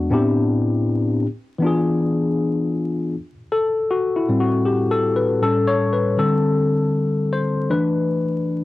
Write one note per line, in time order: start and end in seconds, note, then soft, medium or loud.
0.00 0.13 E2 medium
0.00 0.13 G#3 medium
0.00 0.11 B3 medium
0.00 0.11 D4 medium
0.00 0.12 F#4 medium
0.10 1.24 A2 medium
0.10 1.24 B3 medium
0.10 1.25 C4 medium
0.10 1.25 D4 medium
0.10 1.25 E4 medium
0.10 1.26 G4 medium
1.59 3.09 E3 medium
1.59 3.10 B3 medium
1.59 3.11 D4 medium
1.64 3.12 F4 medium
1.64 3.13 G#4 medium
3.52 3.87 A4 medium
3.91 4.16 F#4 medium
4.16 4.42 E4 medium
4.28 5.38 A2 medium
4.28 5.38 G3 soft
4.28 5.39 C4 medium
4.40 4.67 F#4 medium
4.65 4.92 G4 medium
4.91 5.15 A4 medium
5.16 5.42 B4 medium
5.42 5.95 A2 soft
5.42 5.96 G3 soft
5.42 5.96 C#4 medium
5.42 5.68 A4 medium
5.67 5.93 C#5 loud
5.93 6.16 B4 medium
6.17 6.71 D3 medium
6.17 6.71 G3 soft
6.17 6.72 C4 medium
6.17 6.54 A4 medium
7.33 7.71 C5 medium
7.69 8.64 E3 medium
7.69 8.64 A3 medium
7.69 8.64 D4 medium
7.69 8.64 B4 loud